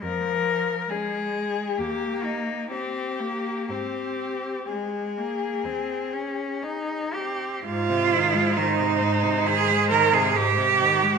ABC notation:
X:1
M:4/4
L:1/16
Q:1/4=66
K:Ab
V:1 name="Cello"
B4 A4 G2 E2 G4 | G4 A8- A2 z2 | c16 |]
V:2 name="Cello"
z4 D4 z4 D4 | z4 C4 z4 C2 C2 | F4 E4 A2 B A G4 |]
V:3 name="Cello" clef=bass
F,4 A,4 B,4 C2 B,2 | C4 A,2 B,2 C2 D2 E2 G2 | A,, C, E, A, E, C, A,, C, E, A, E, C, A,, C, E, A, |]
V:4 name="Cello" clef=bass
F,,4 z4 E,,4 z4 | A,,4 z4 E,,4 z4 | A,,16 |]